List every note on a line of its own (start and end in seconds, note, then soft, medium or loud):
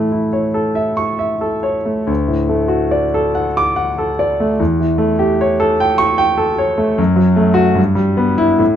0.00 2.04 A2 medium
0.00 2.12 E3 soft
0.00 0.27 A3 soft
0.12 0.48 E4 soft
0.33 0.69 C#5 soft
0.54 0.91 A4 medium
0.75 1.12 E5 soft
0.97 1.33 C#6 medium
1.19 1.55 E5 soft
1.41 1.77 A4 soft
1.63 1.99 C#5 soft
1.85 2.08 A3 soft
2.07 4.55 D2 medium
2.28 2.64 A2 soft
2.49 2.85 A3 soft
2.68 3.04 F#4 soft
2.91 3.26 D5 soft
3.14 3.47 A4 medium
3.35 3.68 F#5 medium
3.57 3.90 D6 medium
3.76 4.10 F#5 medium
3.98 4.31 A4 soft
4.19 4.52 D5 medium
4.40 4.60 A3 medium
4.60 6.95 E2 medium
4.80 5.12 E3 soft
4.98 5.31 A3 medium
5.19 5.51 G4 medium
5.41 5.72 C#5 medium
5.60 5.91 A4 medium
5.80 6.11 G5 medium
5.98 6.30 C#6 medium
6.18 6.50 G5 medium
6.37 6.70 A4 medium
6.58 6.91 C#5 medium
6.78 6.98 A3 medium
6.98 7.75 F#2 medium
7.16 7.49 F#3 medium
7.36 7.69 A3 medium
7.54 7.76 F#4 medium
7.75 8.56 G2 medium
7.95 8.29 G3 medium
8.17 8.51 B3 medium
8.38 8.59 E4 medium
8.59 8.76 A2 medium